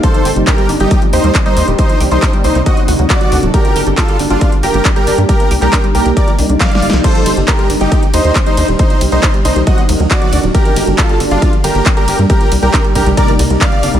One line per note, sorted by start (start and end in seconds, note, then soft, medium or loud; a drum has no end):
0.00 0.07 G3 medium
0.00 0.87 A#3 medium
0.00 0.31 A4 medium
0.00 0.30 C5 loud
0.00 kick loud
0.00 closed hi-hat medium
0.14 0.18 F3 medium
0.14 closed hi-hat soft
0.25 0.32 G1 medium
0.25 0.29 G4 loud
0.25 open hi-hat loud
0.36 0.43 G1 medium
0.36 0.43 G3 medium
0.36 closed hi-hat soft
0.47 0.51 D4 medium
0.47 0.68 G4 medium
0.47 0.68 A#4 loud
0.47 kick loud
0.47 clap loud
0.47 closed hi-hat medium
0.58 0.68 G3 loud
0.58 closed hi-hat soft
0.69 0.76 G1 medium
0.69 0.79 D4 medium
0.69 open hi-hat loud
0.80 0.87 G1 medium
0.80 0.90 G3 medium
0.80 1.00 D#4 medium
0.80 1.00 G4 medium
0.80 closed hi-hat soft
0.91 0.95 G3 medium
0.91 kick loud
0.91 closed hi-hat medium
1.02 1.06 F3 medium
1.02 closed hi-hat soft
1.13 1.20 D#2 loud
1.13 1.33 D#4 medium
1.13 1.17 G4 loud
1.13 1.33 C5 loud
1.13 open hi-hat loud
1.24 1.31 D#2 medium
1.24 1.30 G3 medium
1.24 closed hi-hat soft
1.35 1.39 D4 medium
1.35 kick loud
1.35 clap loud
1.35 closed hi-hat medium
1.46 1.55 G3 loud
1.46 1.66 D#4 medium
1.46 1.66 C5 loud
1.46 closed hi-hat soft
1.57 1.64 D#2 medium
1.57 1.66 D4 medium
1.57 open hi-hat loud
1.68 1.75 D#1 medium
1.68 1.77 G3 medium
1.68 closed hi-hat soft
1.79 1.82 G3 medium
1.79 1.99 D#4 medium
1.79 1.99 C5 loud
1.79 kick loud
1.79 closed hi-hat loud
1.89 1.93 F3 medium
1.89 closed hi-hat soft
2.00 2.07 C2 medium
2.00 2.04 G4 loud
2.00 open hi-hat loud
2.11 2.18 C2 medium
2.11 2.18 G3 medium
2.11 2.32 D#4 medium
2.11 2.32 C5 medium
2.11 closed hi-hat soft
2.22 2.26 D4 medium
2.22 kick loud
2.22 clap loud
2.22 closed hi-hat medium
2.33 2.43 G3 loud
2.33 closed hi-hat soft
2.44 2.51 C2 medium
2.44 2.54 D4 medium
2.44 2.58 D#4 medium
2.44 2.58 C5 medium
2.44 open hi-hat loud
2.55 2.62 C2 medium
2.55 2.65 G3 medium
2.55 closed hi-hat soft
2.66 2.70 F#3 medium
2.66 5.27 D4 medium
2.66 2.80 F#4 medium
2.66 2.80 D#5 medium
2.66 kick loud
2.66 closed hi-hat loud
2.77 2.81 F#3 medium
2.77 closed hi-hat soft
2.88 2.95 D2 loud
2.88 2.92 F#4 loud
2.88 open hi-hat loud
2.99 3.06 D2 medium
2.99 3.06 F#3 medium
2.99 closed hi-hat soft
3.10 3.14 D4 medium
3.10 3.37 F#4 medium
3.10 3.37 D5 loud
3.10 kick loud
3.10 clap loud
3.10 closed hi-hat medium
3.21 3.31 F#3 loud
3.21 closed hi-hat soft
3.32 3.39 D2 medium
3.32 3.42 D4 medium
3.32 open hi-hat loud
3.43 3.50 D1 medium
3.43 3.53 F#3 medium
3.43 closed hi-hat soft
3.54 7.88 G3 medium
3.54 3.58 G3 medium
3.54 7.88 A#3 medium
3.54 3.81 G4 medium
3.54 3.81 A#4 loud
3.54 kick loud
3.54 closed hi-hat loud
3.65 3.69 F3 medium
3.65 closed hi-hat soft
3.76 3.83 G1 loud
3.76 3.80 G4 loud
3.76 open hi-hat loud
3.87 3.94 G1 medium
3.87 3.93 G3 medium
3.87 closed hi-hat soft
3.98 4.01 D4 medium
3.98 4.18 F4 medium
3.98 4.18 A4 loud
3.98 kick loud
3.98 clap loud
3.98 closed hi-hat loud
4.08 4.18 G3 loud
4.08 closed hi-hat soft
4.19 4.26 G1 loud
4.19 4.29 D4 medium
4.19 open hi-hat loud
4.30 4.37 G1 medium
4.30 4.40 G3 medium
4.30 4.51 D4 medium
4.30 4.51 F4 loud
4.30 closed hi-hat soft
4.41 4.45 G3 medium
4.41 kick loud
4.41 closed hi-hat loud
4.52 4.56 F3 medium
4.52 closed hi-hat soft
4.63 4.70 G1 loud
4.63 4.83 G4 medium
4.63 4.67 G4 loud
4.63 4.83 A#4 medium
4.63 open hi-hat loud
4.74 4.81 G1 medium
4.74 4.81 G3 medium
4.74 closed hi-hat soft
4.85 4.89 D4 medium
4.85 kick loud
4.85 clap loud
4.85 closed hi-hat loud
4.96 5.06 G3 loud
4.96 5.16 G4 medium
4.96 5.16 A#4 loud
4.96 closed hi-hat soft
5.07 5.14 G1 medium
5.07 5.17 D4 medium
5.07 open hi-hat loud
5.18 5.25 G2 medium
5.18 5.28 G3 medium
5.18 closed hi-hat soft
5.29 7.03 C3 medium
5.29 5.33 G3 medium
5.29 7.03 D#4 medium
5.29 5.49 G4 medium
5.29 5.49 A#4 loud
5.29 kick loud
5.29 closed hi-hat loud
5.40 5.44 F3 medium
5.40 closed hi-hat soft
5.51 5.58 C2 medium
5.51 5.55 G4 loud
5.51 open hi-hat loud
5.62 5.69 C2 medium
5.62 5.68 G3 medium
5.62 5.82 G4 medium
5.62 5.82 A#4 loud
5.62 clap soft
5.62 closed hi-hat soft
5.73 5.77 D4 medium
5.73 kick loud
5.73 clap loud
5.73 closed hi-hat loud
5.84 5.93 G3 loud
5.84 closed hi-hat soft
5.95 6.02 C2 medium
5.95 6.04 D4 medium
5.95 6.08 G4 medium
5.95 6.08 A#4 medium
5.95 open hi-hat loud
6.06 6.13 C2 medium
6.06 6.15 G3 medium
6.06 closed hi-hat soft
6.17 6.20 G3 medium
6.17 6.30 A#4 medium
6.17 6.30 D5 medium
6.17 kick loud
6.17 closed hi-hat loud
6.28 6.31 F3 medium
6.28 closed hi-hat soft
6.38 6.46 C2 loud
6.38 6.42 D4 medium
6.38 open hi-hat loud
6.49 6.56 C2 medium
6.49 6.56 D3 medium
6.49 closed hi-hat soft
6.60 6.67 G3 medium
6.60 6.87 D5 medium
6.60 6.87 F5 loud
6.60 kick loud
6.60 snare medium
6.60 clap loud
6.60 closed hi-hat loud
6.71 6.78 G3 medium
6.71 snare medium
6.71 closed hi-hat soft
6.82 6.89 G1 medium
6.82 6.86 G3 medium
6.82 open hi-hat loud
6.90 7.00 C2 medium
6.90 7.00 F3 medium
6.90 snare loud
6.90 closed hi-hat soft
7.04 7.08 G3 medium
7.04 8.78 D4 medium
7.04 7.31 A4 medium
7.04 7.31 C5 loud
7.04 kick loud
7.04 closed hi-hat loud
7.04 crash medium
7.15 7.19 F3 medium
7.15 closed hi-hat soft
7.26 7.33 G1 medium
7.26 7.30 G3 medium
7.26 open hi-hat loud
7.26 ride medium
7.37 7.44 G1 medium
7.37 7.43 G3 medium
7.37 closed hi-hat soft
7.48 7.52 D4 medium
7.48 7.68 G4 medium
7.48 7.68 A#4 loud
7.48 kick loud
7.48 clap loud
7.48 closed hi-hat loud
7.59 7.68 G3 loud
7.59 closed hi-hat soft
7.70 7.77 G1 loud
7.70 7.79 D4 medium
7.70 open hi-hat loud
7.70 ride medium
7.81 7.88 G1 medium
7.81 7.90 G3 medium
7.81 8.01 D#4 medium
7.81 8.01 G4 medium
7.81 closed hi-hat soft
7.92 7.96 G3 medium
7.92 kick loud
7.92 closed hi-hat loud
8.03 8.07 F3 medium
8.03 closed hi-hat soft
8.14 8.21 D#2 loud
8.14 8.18 G3 medium
8.14 8.34 D#4 medium
8.14 8.34 C5 medium
8.14 open hi-hat loud
8.14 ride medium
8.25 8.32 D#2 medium
8.25 8.31 G3 medium
8.25 closed hi-hat soft
8.35 8.39 D4 medium
8.35 kick loud
8.35 clap loud
8.35 closed hi-hat loud
8.46 8.56 G3 loud
8.46 8.67 D#4 medium
8.46 8.67 C5 loud
8.46 closed hi-hat soft
8.57 8.64 D#2 medium
8.57 8.67 D4 medium
8.57 open hi-hat loud
8.57 ride medium
8.68 8.75 D#1 medium
8.68 8.78 G3 medium
8.68 closed hi-hat soft
8.79 9.00 D#4 medium
8.79 9.00 C5 loud
8.79 kick loud
8.79 closed hi-hat loud
8.90 8.94 F3 medium
8.90 closed hi-hat soft
9.01 9.08 C2 medium
9.01 9.05 G3 medium
9.01 open hi-hat loud
9.01 ride medium
9.12 9.19 C2 medium
9.12 9.19 G3 medium
9.12 9.32 D#4 medium
9.12 9.32 C5 medium
9.12 closed hi-hat soft
9.23 9.27 D4 medium
9.23 kick loud
9.23 clap loud
9.23 closed hi-hat loud
9.34 9.44 G3 loud
9.34 closed hi-hat soft
9.45 9.52 C2 loud
9.45 9.55 D4 medium
9.45 9.59 D#4 medium
9.45 9.59 C5 medium
9.45 open hi-hat loud
9.45 ride medium
9.56 9.63 C2 medium
9.56 9.66 G3 medium
9.56 closed hi-hat soft
9.67 9.71 F#3 medium
9.67 12.27 D4 medium
9.67 9.80 F#4 medium
9.67 9.80 D#5 medium
9.67 kick loud
9.67 closed hi-hat loud
9.78 9.82 F#3 medium
9.78 closed hi-hat soft
9.89 9.96 D2 loud
9.89 9.93 F#3 medium
9.89 open hi-hat loud
9.89 ride medium
10.00 10.07 D2 medium
10.00 10.06 F#3 medium
10.00 closed hi-hat soft
10.11 10.15 D4 medium
10.11 10.38 F#4 medium
10.11 10.38 D5 loud
10.11 kick loud
10.11 clap loud
10.11 closed hi-hat medium
10.22 10.31 F#3 loud
10.22 closed hi-hat soft
10.33 10.40 D2 medium
10.33 10.42 D4 medium
10.33 open hi-hat loud
10.33 ride medium
10.44 10.51 D1 medium
10.44 10.53 F#3 medium
10.44 closed hi-hat soft
10.54 14.00 G3 medium
10.54 10.58 G3 medium
10.54 14.00 A#3 medium
10.54 10.82 G4 medium
10.54 10.82 A#4 loud
10.54 kick loud
10.54 closed hi-hat medium
10.65 10.69 F3 medium
10.65 closed hi-hat soft
10.76 10.83 G1 loud
10.76 10.80 G3 medium
10.76 open hi-hat loud
10.76 ride medium
10.87 10.94 G1 medium
10.87 10.94 G3 medium
10.87 closed hi-hat soft
10.98 11.02 D4 medium
10.98 11.19 F4 medium
10.98 11.19 A4 loud
10.98 kick loud
10.98 clap loud
10.98 closed hi-hat medium
11.09 11.19 G3 loud
11.09 closed hi-hat soft
11.20 11.27 G1 loud
11.20 11.30 D4 medium
11.20 open hi-hat loud
11.20 ride medium
11.31 11.38 G1 medium
11.31 11.41 G3 medium
11.31 11.52 D4 medium
11.31 11.52 F4 loud
11.31 closed hi-hat soft
11.42 11.46 G3 medium
11.42 kick loud
11.42 closed hi-hat medium
11.53 11.57 F3 medium
11.53 closed hi-hat soft
11.64 11.71 G1 loud
11.64 11.68 G3 medium
11.64 11.84 G4 medium
11.64 11.84 A#4 medium
11.64 open hi-hat loud
11.64 ride medium
11.75 11.82 G1 medium
11.75 11.81 G3 medium
11.75 closed hi-hat soft
11.86 11.90 D4 medium
11.86 kick loud
11.86 clap loud
11.86 closed hi-hat medium
11.97 12.07 G3 loud
11.97 12.17 G4 medium
11.97 12.17 A#4 loud
11.97 closed hi-hat soft
12.08 12.15 G1 medium
12.08 12.17 D4 medium
12.08 open hi-hat loud
12.08 ride medium
12.19 12.26 G2 medium
12.19 12.28 G3 medium
12.19 closed hi-hat soft
12.30 14.00 C3 medium
12.30 12.34 G3 medium
12.30 14.00 D#4 medium
12.30 12.50 G4 medium
12.30 12.50 A#4 loud
12.30 kick loud
12.30 closed hi-hat medium
12.41 12.45 F3 medium
12.41 closed hi-hat soft
12.52 12.59 C2 medium
12.52 12.56 G3 medium
12.52 open hi-hat loud
12.52 ride medium
12.63 12.70 C2 medium
12.63 12.69 G3 medium
12.63 12.83 G4 medium
12.63 12.83 A#4 loud
12.63 closed hi-hat soft
12.74 12.78 D4 medium
12.74 kick loud
12.74 clap loud
12.74 closed hi-hat medium
12.85 12.94 G3 loud
12.85 closed hi-hat soft
12.95 13.02 C2 loud
12.95 13.05 D4 medium
12.95 13.09 G4 medium
12.95 13.09 A#4 medium
12.95 kick medium
12.95 open hi-hat loud
12.95 ride medium
13.06 13.13 C2 medium
13.06 13.16 G3 medium
13.06 closed hi-hat soft
13.17 13.21 G3 medium
13.17 13.31 A#4 medium
13.17 13.31 D5 medium
13.17 kick loud
13.17 closed hi-hat medium
13.28 13.32 F3 medium
13.28 closed hi-hat soft
13.39 13.46 C2 loud
13.39 13.43 G3 medium
13.39 open hi-hat loud
13.39 ride medium
13.50 13.57 C2 medium
13.50 13.57 G3 medium
13.50 closed hi-hat soft
13.61 13.65 D4 medium
13.61 13.88 D5 medium
13.61 13.88 F5 loud
13.61 kick loud
13.61 clap loud
13.61 closed hi-hat medium
13.72 13.82 G3 loud
13.72 closed hi-hat soft
13.83 13.90 G1 medium
13.83 13.93 D4 medium
13.83 open hi-hat loud
13.83 ride medium
13.94 14.00 C2 medium
13.94 14.00 G3 medium
13.94 closed hi-hat soft